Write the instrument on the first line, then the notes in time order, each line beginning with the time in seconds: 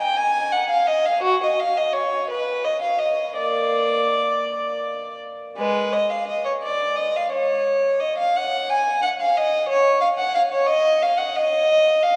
violin
0.02 G5
0.17 G#5
0.52 F#5
0.69 F5
0.87 D#5
1.05 F5
1.22 F#4
1.43 D#5
1.60 F5
1.77 D#5
1.93 C#5
2.30 B4
2.64 D#5
2.81 F5
2.99 D#5
3.36 A#3 D5
5.57 G#3 B4
5.93 D#5
6.10 F5
6.27 D#5
6.45 C#5
6.62 D5
6.96 D#5
7.16 F5
7.32 C#5
8.00 D#5
8.18 F5
8.36 F#5
8.70 G#5
9.02 F#5
9.21 F5
9.37 D#5
9.69 C#5
10.01 F5
10.18 F#5
10.35 F5
10.53 C#5
10.67 D#5
11.02 F5
11.17 F#5
11.36 D#5
12.02 F5